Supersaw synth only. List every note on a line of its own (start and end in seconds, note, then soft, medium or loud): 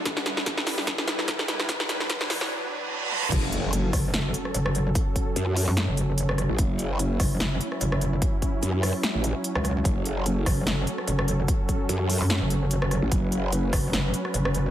0.05 1.67 G3 medium
0.05 1.67 E4 medium
0.05 3.29 B4 medium
1.69 3.30 F#3 medium
1.69 3.30 D4 medium
3.32 14.71 F#3 medium
3.32 14.71 C#4 medium
3.32 6.58 A4 medium
6.59 9.84 E4 medium
9.85 13.11 A4 medium
13.12 14.71 B4 medium